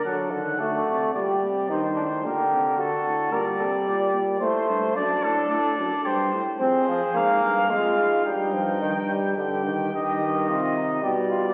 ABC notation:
X:1
M:3/4
L:1/8
Q:1/4=110
K:Cm
V:1 name="Trumpet"
^f2 d2 d2 | c2 B2 =A2 | d4 c2 | d =A d2 c z |
c2 f4 | g4 g2 | e2 e2 d2 |]
V:2 name="Flugelhorn"
=A2 ^F2 G2 | E D G2 ^F2 | B =A d2 c2 | =A4 G z |
A4 F2 | E4 G2 | G2 F E G F |]
V:3 name="Trombone" clef=bass
^F, D, =A,2 G,2 | E,2 D,4 | G,4 =A,2 | D4- D z |
C F, B,2 A,2 | G, F, E, G, D, E, | E,4 G,2 |]
V:4 name="Bass trombone" clef=bass
D, E, D, C, B,, C, | G,, =A,, B,, C, D, A,, | B,, C, B,, B,, =A,, G,, | ^F,, =A,, A,, F,, G,, A,, |
F,, z A,, G,, F,, A,, | G,,4 G,,2 | G,, G,, C,2 =B,,2 |]